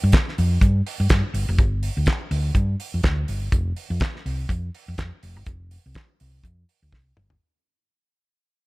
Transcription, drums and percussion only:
0, 0, Header, 1, 2, 480
1, 0, Start_track
1, 0, Tempo, 484653
1, 1570, Time_signature, 4, 2, 24, 8
1, 8582, End_track
2, 0, Start_track
2, 0, Title_t, "Drums"
2, 122, Note_on_c, 9, 42, 64
2, 132, Note_on_c, 9, 36, 122
2, 140, Note_on_c, 9, 38, 122
2, 150, Note_on_c, 9, 39, 91
2, 221, Note_off_c, 9, 42, 0
2, 231, Note_off_c, 9, 36, 0
2, 239, Note_off_c, 9, 38, 0
2, 249, Note_off_c, 9, 39, 0
2, 280, Note_on_c, 9, 38, 39
2, 378, Note_on_c, 9, 46, 62
2, 379, Note_off_c, 9, 38, 0
2, 477, Note_off_c, 9, 46, 0
2, 608, Note_on_c, 9, 36, 109
2, 617, Note_on_c, 9, 42, 63
2, 707, Note_off_c, 9, 36, 0
2, 716, Note_off_c, 9, 42, 0
2, 857, Note_on_c, 9, 46, 75
2, 956, Note_off_c, 9, 46, 0
2, 1084, Note_on_c, 9, 42, 69
2, 1091, Note_on_c, 9, 36, 117
2, 1092, Note_on_c, 9, 38, 109
2, 1102, Note_on_c, 9, 39, 89
2, 1183, Note_off_c, 9, 42, 0
2, 1190, Note_off_c, 9, 36, 0
2, 1191, Note_off_c, 9, 38, 0
2, 1201, Note_off_c, 9, 39, 0
2, 1331, Note_on_c, 9, 46, 68
2, 1431, Note_off_c, 9, 46, 0
2, 1568, Note_on_c, 9, 42, 55
2, 1570, Note_on_c, 9, 36, 122
2, 1667, Note_off_c, 9, 42, 0
2, 1669, Note_off_c, 9, 36, 0
2, 1810, Note_on_c, 9, 46, 61
2, 1909, Note_off_c, 9, 46, 0
2, 2039, Note_on_c, 9, 42, 62
2, 2050, Note_on_c, 9, 36, 119
2, 2057, Note_on_c, 9, 38, 110
2, 2067, Note_on_c, 9, 39, 93
2, 2138, Note_off_c, 9, 42, 0
2, 2149, Note_off_c, 9, 36, 0
2, 2156, Note_off_c, 9, 38, 0
2, 2166, Note_off_c, 9, 39, 0
2, 2289, Note_on_c, 9, 46, 74
2, 2388, Note_off_c, 9, 46, 0
2, 2523, Note_on_c, 9, 36, 108
2, 2529, Note_on_c, 9, 42, 65
2, 2622, Note_off_c, 9, 36, 0
2, 2628, Note_off_c, 9, 42, 0
2, 2771, Note_on_c, 9, 46, 66
2, 2870, Note_off_c, 9, 46, 0
2, 3004, Note_on_c, 9, 42, 68
2, 3009, Note_on_c, 9, 36, 110
2, 3013, Note_on_c, 9, 38, 108
2, 3023, Note_on_c, 9, 39, 88
2, 3103, Note_off_c, 9, 42, 0
2, 3108, Note_off_c, 9, 36, 0
2, 3112, Note_off_c, 9, 38, 0
2, 3122, Note_off_c, 9, 39, 0
2, 3249, Note_on_c, 9, 46, 65
2, 3348, Note_off_c, 9, 46, 0
2, 3489, Note_on_c, 9, 36, 127
2, 3489, Note_on_c, 9, 42, 59
2, 3588, Note_off_c, 9, 36, 0
2, 3588, Note_off_c, 9, 42, 0
2, 3728, Note_on_c, 9, 46, 60
2, 3827, Note_off_c, 9, 46, 0
2, 3962, Note_on_c, 9, 42, 62
2, 3971, Note_on_c, 9, 36, 127
2, 3979, Note_on_c, 9, 38, 112
2, 3989, Note_on_c, 9, 39, 98
2, 4061, Note_off_c, 9, 42, 0
2, 4070, Note_off_c, 9, 36, 0
2, 4078, Note_off_c, 9, 38, 0
2, 4088, Note_off_c, 9, 39, 0
2, 4118, Note_on_c, 9, 38, 38
2, 4217, Note_off_c, 9, 38, 0
2, 4220, Note_on_c, 9, 46, 74
2, 4319, Note_off_c, 9, 46, 0
2, 4448, Note_on_c, 9, 36, 94
2, 4457, Note_on_c, 9, 42, 74
2, 4547, Note_off_c, 9, 36, 0
2, 4556, Note_off_c, 9, 42, 0
2, 4700, Note_on_c, 9, 46, 70
2, 4799, Note_off_c, 9, 46, 0
2, 4931, Note_on_c, 9, 42, 72
2, 4934, Note_on_c, 9, 36, 98
2, 4939, Note_on_c, 9, 38, 109
2, 4949, Note_on_c, 9, 39, 89
2, 5030, Note_off_c, 9, 42, 0
2, 5033, Note_off_c, 9, 36, 0
2, 5038, Note_off_c, 9, 38, 0
2, 5048, Note_off_c, 9, 39, 0
2, 5177, Note_on_c, 9, 46, 66
2, 5276, Note_off_c, 9, 46, 0
2, 5409, Note_on_c, 9, 42, 61
2, 5413, Note_on_c, 9, 36, 123
2, 5508, Note_off_c, 9, 42, 0
2, 5512, Note_off_c, 9, 36, 0
2, 5655, Note_on_c, 9, 46, 63
2, 5754, Note_off_c, 9, 46, 0
2, 5887, Note_on_c, 9, 42, 62
2, 5897, Note_on_c, 9, 36, 127
2, 5905, Note_on_c, 9, 38, 120
2, 5915, Note_on_c, 9, 39, 86
2, 5986, Note_off_c, 9, 42, 0
2, 5996, Note_off_c, 9, 36, 0
2, 6004, Note_off_c, 9, 38, 0
2, 6014, Note_off_c, 9, 39, 0
2, 6140, Note_on_c, 9, 46, 69
2, 6239, Note_off_c, 9, 46, 0
2, 6374, Note_on_c, 9, 36, 94
2, 6385, Note_on_c, 9, 42, 67
2, 6473, Note_off_c, 9, 36, 0
2, 6484, Note_off_c, 9, 42, 0
2, 6625, Note_on_c, 9, 46, 66
2, 6724, Note_off_c, 9, 46, 0
2, 6858, Note_on_c, 9, 36, 114
2, 6870, Note_on_c, 9, 38, 60
2, 6957, Note_off_c, 9, 36, 0
2, 6969, Note_off_c, 9, 38, 0
2, 7099, Note_on_c, 9, 45, 99
2, 7198, Note_off_c, 9, 45, 0
2, 7231, Note_on_c, 9, 43, 83
2, 7330, Note_off_c, 9, 43, 0
2, 8582, End_track
0, 0, End_of_file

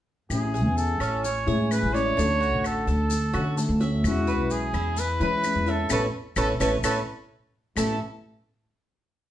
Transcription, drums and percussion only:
0, 0, Header, 1, 2, 480
1, 0, Start_track
1, 0, Key_signature, 3, "major"
1, 0, Tempo, 466200
1, 314, Time_signature, 4, 2, 24, 8
1, 9577, End_track
2, 0, Start_track
2, 0, Title_t, "Drums"
2, 312, Note_on_c, 9, 75, 58
2, 317, Note_on_c, 9, 70, 63
2, 415, Note_off_c, 9, 75, 0
2, 420, Note_off_c, 9, 70, 0
2, 567, Note_on_c, 9, 70, 26
2, 670, Note_off_c, 9, 70, 0
2, 799, Note_on_c, 9, 70, 59
2, 902, Note_off_c, 9, 70, 0
2, 1031, Note_on_c, 9, 75, 58
2, 1042, Note_on_c, 9, 70, 26
2, 1134, Note_off_c, 9, 75, 0
2, 1145, Note_off_c, 9, 70, 0
2, 1283, Note_on_c, 9, 70, 68
2, 1386, Note_off_c, 9, 70, 0
2, 1522, Note_on_c, 9, 70, 24
2, 1625, Note_off_c, 9, 70, 0
2, 1761, Note_on_c, 9, 75, 66
2, 1766, Note_on_c, 9, 70, 66
2, 1864, Note_off_c, 9, 75, 0
2, 1869, Note_off_c, 9, 70, 0
2, 2013, Note_on_c, 9, 70, 26
2, 2116, Note_off_c, 9, 70, 0
2, 2253, Note_on_c, 9, 70, 65
2, 2356, Note_off_c, 9, 70, 0
2, 2495, Note_on_c, 9, 70, 29
2, 2598, Note_off_c, 9, 70, 0
2, 2722, Note_on_c, 9, 75, 61
2, 2728, Note_on_c, 9, 70, 51
2, 2825, Note_off_c, 9, 75, 0
2, 2831, Note_off_c, 9, 70, 0
2, 2965, Note_on_c, 9, 70, 30
2, 3068, Note_off_c, 9, 70, 0
2, 3195, Note_on_c, 9, 70, 77
2, 3298, Note_off_c, 9, 70, 0
2, 3442, Note_on_c, 9, 75, 55
2, 3443, Note_on_c, 9, 70, 26
2, 3545, Note_off_c, 9, 75, 0
2, 3546, Note_off_c, 9, 70, 0
2, 3683, Note_on_c, 9, 70, 67
2, 3786, Note_off_c, 9, 70, 0
2, 3926, Note_on_c, 9, 70, 25
2, 4029, Note_off_c, 9, 70, 0
2, 4162, Note_on_c, 9, 75, 61
2, 4167, Note_on_c, 9, 70, 65
2, 4265, Note_off_c, 9, 75, 0
2, 4270, Note_off_c, 9, 70, 0
2, 4401, Note_on_c, 9, 70, 32
2, 4504, Note_off_c, 9, 70, 0
2, 4639, Note_on_c, 9, 70, 58
2, 4742, Note_off_c, 9, 70, 0
2, 4877, Note_on_c, 9, 70, 29
2, 4883, Note_on_c, 9, 75, 55
2, 4980, Note_off_c, 9, 70, 0
2, 4986, Note_off_c, 9, 75, 0
2, 5115, Note_on_c, 9, 70, 65
2, 5218, Note_off_c, 9, 70, 0
2, 5361, Note_on_c, 9, 70, 23
2, 5464, Note_off_c, 9, 70, 0
2, 5595, Note_on_c, 9, 70, 67
2, 5606, Note_on_c, 9, 75, 61
2, 5698, Note_off_c, 9, 70, 0
2, 5709, Note_off_c, 9, 75, 0
2, 5834, Note_on_c, 9, 70, 25
2, 5937, Note_off_c, 9, 70, 0
2, 6070, Note_on_c, 9, 70, 98
2, 6075, Note_on_c, 9, 75, 83
2, 6173, Note_off_c, 9, 70, 0
2, 6178, Note_off_c, 9, 75, 0
2, 6552, Note_on_c, 9, 70, 79
2, 6552, Note_on_c, 9, 75, 84
2, 6655, Note_off_c, 9, 70, 0
2, 6655, Note_off_c, 9, 75, 0
2, 6800, Note_on_c, 9, 70, 85
2, 6804, Note_on_c, 9, 75, 82
2, 6903, Note_off_c, 9, 70, 0
2, 6907, Note_off_c, 9, 75, 0
2, 7039, Note_on_c, 9, 70, 110
2, 7041, Note_on_c, 9, 75, 98
2, 7142, Note_off_c, 9, 70, 0
2, 7144, Note_off_c, 9, 75, 0
2, 7996, Note_on_c, 9, 75, 84
2, 8001, Note_on_c, 9, 70, 92
2, 8099, Note_off_c, 9, 75, 0
2, 8104, Note_off_c, 9, 70, 0
2, 9577, End_track
0, 0, End_of_file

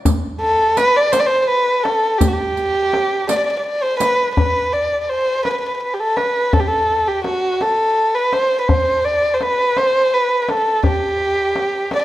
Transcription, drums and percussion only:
0, 0, Header, 1, 3, 480
1, 0, Start_track
1, 0, Tempo, 718219
1, 38, Time_signature, 6, 3, 24, 8
1, 8051, End_track
2, 0, Start_track
2, 0, Title_t, "Riq"
2, 38, Note_on_c, 9, 54, 65
2, 105, Note_off_c, 9, 54, 0
2, 515, Note_on_c, 9, 54, 51
2, 582, Note_off_c, 9, 54, 0
2, 754, Note_on_c, 9, 54, 52
2, 821, Note_off_c, 9, 54, 0
2, 1478, Note_on_c, 9, 54, 64
2, 1545, Note_off_c, 9, 54, 0
2, 1719, Note_on_c, 9, 54, 18
2, 1786, Note_off_c, 9, 54, 0
2, 2199, Note_on_c, 9, 54, 60
2, 2265, Note_off_c, 9, 54, 0
2, 2676, Note_on_c, 9, 54, 58
2, 2743, Note_off_c, 9, 54, 0
2, 8051, End_track
3, 0, Start_track
3, 0, Title_t, "Tombak"
3, 36, Note_on_c, 9, 64, 91
3, 103, Note_off_c, 9, 64, 0
3, 520, Note_on_c, 9, 63, 69
3, 587, Note_off_c, 9, 63, 0
3, 759, Note_on_c, 9, 63, 77
3, 825, Note_off_c, 9, 63, 0
3, 1237, Note_on_c, 9, 63, 71
3, 1304, Note_off_c, 9, 63, 0
3, 1475, Note_on_c, 9, 64, 91
3, 1542, Note_off_c, 9, 64, 0
3, 1721, Note_on_c, 9, 62, 24
3, 1787, Note_off_c, 9, 62, 0
3, 1961, Note_on_c, 9, 63, 69
3, 2027, Note_off_c, 9, 63, 0
3, 2200, Note_on_c, 9, 63, 75
3, 2267, Note_off_c, 9, 63, 0
3, 2682, Note_on_c, 9, 63, 68
3, 2748, Note_off_c, 9, 63, 0
3, 2922, Note_on_c, 9, 64, 82
3, 2989, Note_off_c, 9, 64, 0
3, 3643, Note_on_c, 9, 63, 60
3, 3710, Note_off_c, 9, 63, 0
3, 4123, Note_on_c, 9, 63, 65
3, 4190, Note_off_c, 9, 63, 0
3, 4365, Note_on_c, 9, 64, 88
3, 4432, Note_off_c, 9, 64, 0
3, 4841, Note_on_c, 9, 63, 62
3, 4908, Note_off_c, 9, 63, 0
3, 5085, Note_on_c, 9, 63, 59
3, 5152, Note_off_c, 9, 63, 0
3, 5564, Note_on_c, 9, 63, 59
3, 5631, Note_off_c, 9, 63, 0
3, 5807, Note_on_c, 9, 64, 80
3, 5874, Note_off_c, 9, 64, 0
3, 6286, Note_on_c, 9, 63, 59
3, 6353, Note_off_c, 9, 63, 0
3, 6527, Note_on_c, 9, 63, 66
3, 6594, Note_off_c, 9, 63, 0
3, 7008, Note_on_c, 9, 63, 67
3, 7075, Note_off_c, 9, 63, 0
3, 7241, Note_on_c, 9, 64, 81
3, 7308, Note_off_c, 9, 64, 0
3, 7485, Note_on_c, 9, 62, 21
3, 7551, Note_off_c, 9, 62, 0
3, 7723, Note_on_c, 9, 63, 64
3, 7790, Note_off_c, 9, 63, 0
3, 7961, Note_on_c, 9, 63, 67
3, 8028, Note_off_c, 9, 63, 0
3, 8051, End_track
0, 0, End_of_file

